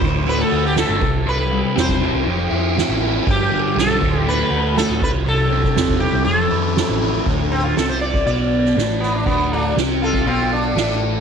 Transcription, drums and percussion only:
0.01 kick, ride, low conga
0.14 high conga
0.26 ride, high conga
0.51 ride
0.76 snare, ride, low conga
1.01 kick, ride, low conga
1.26 ride
1.39 high conga
1.52 ride
1.77 snare, ride
1.89 kick, high conga
2.01 ride, low conga
2.13 high conga
2.26 ride, high conga
2.52 ride
2.76 snare, ride, low conga
3.00 ride, low conga
3.27 kick, ride
3.38 high conga
3.52 ride
3.78 snare, ride
3.88 high conga
4.01 kick, ride, low conga
4.13 high conga
4.25 ride, high conga
4.52 ride
4.76 snare, ride, low conga
5.01 kick, ride, low conga
5.26 ride
5.38 high conga
5.50 ride, low conga
5.64 kick
5.76 snare, ride
5.89 kick, high conga
6.01 ride, low conga
6.14 high conga
6.25 ride, high conga
6.51 ride
6.76 snare, ride, high conga
6.89 high conga
7.01 ride, low conga
7.14 low conga
7.26 kick, ride
7.51 ride
7.76 snare, ride
7.90 snare
8.01 ride
8.14 kick
8.26 ride
8.52 ride
8.65 snare
8.77 snare, ride
9.02 snare, ride
9.26 kick, ride
9.52 ride
9.76 snare, ride
10.02 ride
10.14 kick
10.27 ride
10.52 ride
10.76 snare, ride
10.90 snare
11.01 ride

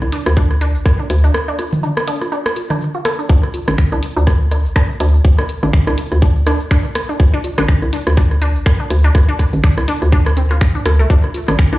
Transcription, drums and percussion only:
0.02 cross-stick, cabasa
0.12 open hi-hat
0.26 cross-stick, high conga, cabasa
0.37 kick, cabasa
0.51 cross-stick, cabasa
0.61 open hi-hat
0.75 cabasa
0.86 kick, cross-stick, cabasa
0.99 cabasa
1.10 cross-stick, open hi-hat
1.24 cabasa
1.34 cross-stick, cabasa
1.48 cabasa
1.59 cross-stick, open hi-hat, high conga
1.73 mid tom, cabasa
1.83 cabasa
1.97 cross-stick, cabasa
2.08 open hi-hat
2.21 cross-stick, high conga, cabasa
2.32 cabasa
2.46 cross-stick, cabasa
2.56 open hi-hat, high conga
2.70 cross-stick, mid tom, cabasa
2.81 cabasa
2.94 cabasa
3.05 cross-stick, open hi-hat
3.19 cabasa
3.29 kick, cabasa
3.43 cross-stick, cabasa
3.54 open hi-hat, high conga
3.67 cross-stick, mid tom, cabasa
3.78 finger snap, kick, cabasa
3.92 cross-stick, cabasa
4.03 open hi-hat
4.17 high conga, cabasa
4.27 kick, cross-stick, cabasa
4.41 cabasa
4.51 cross-stick, open hi-hat
4.66 cabasa
4.76 finger snap, kick, cross-stick, cabasa
4.90 cabasa
5.00 cross-stick, open hi-hat
5.14 cabasa
5.24 kick, cabasa
5.38 cross-stick, cabasa
5.49 open hi-hat
5.63 cross-stick, mid tom, cabasa
5.73 finger snap, kick, cabasa
5.86 cross-stick, cabasa
5.98 open hi-hat
6.11 cross-stick, high conga, cabasa
6.22 kick, cabasa
6.36 cabasa
6.47 cross-stick, open hi-hat
6.60 cabasa
6.71 finger snap, kick, cross-stick, cabasa
6.85 cabasa
6.95 cross-stick, open hi-hat
7.08 cabasa
7.20 kick, cross-stick, cabasa
7.34 cabasa
7.44 open hi-hat, high conga
7.58 cross-stick, mid tom, cabasa
7.68 finger snap, kick, cabasa
7.82 cross-stick, cabasa
7.93 open hi-hat
8.07 cross-stick, high conga, cabasa
8.17 kick, cabasa
8.31 cross-stick, cabasa
8.42 open hi-hat
8.56 cabasa
8.66 finger snap, kick, cross-stick, cabasa
8.80 cabasa
8.90 cross-stick, open hi-hat
9.03 cabasa
9.15 kick, cross-stick, cabasa
9.29 cabasa
9.39 kick, cross-stick, open hi-hat
9.53 mid tom, cabasa
9.63 finger snap, kick, cabasa
9.77 cross-stick, cabasa
9.88 open hi-hat
10.02 cross-stick, high conga, cabasa
10.12 kick, cabasa
10.26 cross-stick, cabasa
10.37 open hi-hat
10.51 cross-stick, cabasa
10.61 finger snap, kick, cabasa
10.75 cabasa
10.86 cross-stick, open hi-hat
10.99 cabasa
11.10 kick, cabasa
11.24 cross-stick, cabasa
11.34 open hi-hat, high conga
11.48 cross-stick, mid tom, cabasa
11.59 finger snap, kick, cabasa
11.73 cross-stick, cabasa

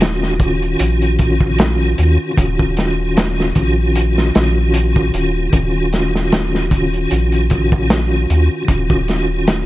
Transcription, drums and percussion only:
0.01 snare, closed hi-hat
0.23 snare
0.40 kick, closed hi-hat
0.62 closed hi-hat
0.79 closed hi-hat
1.02 closed hi-hat
1.19 kick, closed hi-hat
1.41 kick
1.58 snare, closed hi-hat
1.98 closed hi-hat
2.38 kick, closed hi-hat
2.59 kick
2.77 snare, closed hi-hat
3.17 snare, closed hi-hat
3.40 snare
3.55 kick, closed hi-hat
3.96 closed hi-hat
4.18 snare
4.35 snare, closed hi-hat
4.74 closed hi-hat
4.96 kick
5.14 closed hi-hat
5.53 kick, closed hi-hat
5.93 snare, closed hi-hat
6.16 snare
6.32 snare, closed hi-hat
6.55 snare
6.71 kick, closed hi-hat
6.94 closed hi-hat
7.11 closed hi-hat
7.32 closed hi-hat
7.50 kick, closed hi-hat
7.72 kick
7.90 snare, closed hi-hat
8.30 closed hi-hat
8.68 kick, closed hi-hat
8.90 kick
9.08 snare, closed hi-hat
9.48 snare, closed hi-hat

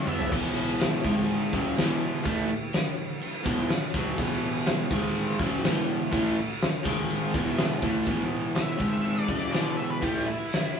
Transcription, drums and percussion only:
0.07 mid tom
0.19 floor tom
0.32 kick, crash
0.80 snare, crash
1.04 kick
1.29 crash
1.53 kick
1.77 snare, crash
2.26 kick, crash
2.73 snare, crash
3.21 crash
3.46 kick
3.69 snare, crash
3.94 kick
4.18 kick, crash
4.66 snare, crash
4.91 kick
5.16 crash
5.39 kick
5.64 snare, crash
6.13 kick, crash
6.61 snare, crash
6.85 kick
7.11 crash
7.34 kick
7.57 snare, crash
7.82 kick
8.06 kick, crash
8.55 snare, crash
8.80 kick
9.04 crash
9.28 kick
9.53 snare, crash
10.02 kick, crash
10.53 snare, crash

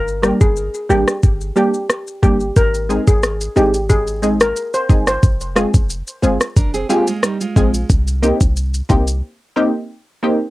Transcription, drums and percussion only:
0.08 maracas
0.23 cross-stick, maracas
0.41 kick, maracas
0.56 maracas
0.74 maracas
0.90 maracas
1.08 cross-stick, maracas
1.23 kick, maracas
1.41 maracas
1.56 maracas
1.74 maracas
1.90 cross-stick, maracas
2.08 maracas
2.23 kick, maracas
2.40 maracas
2.56 kick, shaker, maracas
2.74 shaker, maracas
2.90 shaker, maracas
3.07 kick, shaker, maracas
3.23 cross-stick, maracas, shaker
3.41 maracas, shaker
3.56 high timbale, maracas, shaker
3.74 shaker, maracas
3.89 kick, maracas, shaker
4.07 shaker, maracas
4.23 maracas, shaker
4.40 cross-stick, maracas, shaker
4.56 shaker, maracas
4.74 maracas, shaker
4.90 kick, maracas, shaker
5.07 cross-stick, maracas, shaker
5.23 kick, maracas, shaker
5.41 maracas, shaker
5.56 cross-stick, shaker, maracas
5.74 kick, shaker, maracas
5.89 maracas, shaker
6.07 maracas, shaker
6.23 maracas, shaker
6.41 cross-stick, shaker, maracas
6.56 kick, shaker, maracas
6.74 shaker, maracas
6.90 shaker, maracas
7.07 shaker, maracas
7.23 cross-stick, shaker, maracas
7.41 maracas, shaker
7.56 kick, maracas, shaker
7.74 maracas, shaker
7.90 kick, shaker, maracas
8.07 shaker, maracas
8.23 shaker, maracas
8.41 kick, shaker, maracas
8.56 maracas, shaker
8.74 shaker, maracas
8.89 kick, high timbale, maracas, shaker
9.07 shaker, maracas

